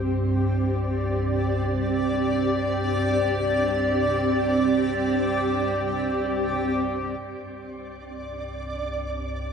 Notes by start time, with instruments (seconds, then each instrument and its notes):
Already playing: synth drone C2 G2, ambient pad C4 G4 D5
7.21 synth drone C2 G2, synth texture D5
8.35 ambient pad C5